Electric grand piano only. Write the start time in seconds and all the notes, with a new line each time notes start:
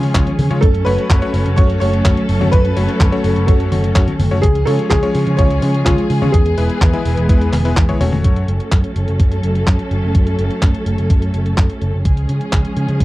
Already playing: G#3 C#4 F4 C#5
0.15 G#3 C#4 F4 C#5
0.51 G#3 C#4 F4 C#5
0.86 A3 C#4 F#4 C#5
1.22 A3 C#4 F#4 C#5
1.58 A3 C#4 F#4 C#5
1.81 A3 C#4 F#4 C#5
2.05 A3 C#4 F#4 C#5
2.41 A3 C#4 F#4 C#5
2.77 A3 C#4 F#4 C#5
3.12 A3 C#4 F#4 C#5
3.48 A3 C#4 F#4 C#5
3.72 A3 C#4 F#4 C#5
3.96 A3 C#4 F#4 C#5
4.31 A3 C#4 F#4 C#5
4.67 G#3 C#4 F4 C#5
5.03 G#3 C#4 F4 C#5
5.39 G#3 C#4 F4 C#5
5.62 G#3 C#4 F4 C#5
5.86 G#3 C#4 F4 C#5
6.22 G#3 C#4 F4 C#5
6.58 G#3 B3 E4 B4
6.93 G#3 B3 E4 B4
7.29 G#3 B3 E4 B4
7.65 G#3 B3 E4 B4
7.89 G#3 B3 E4 C#5
8.01 A3 C#4 F#4 C#5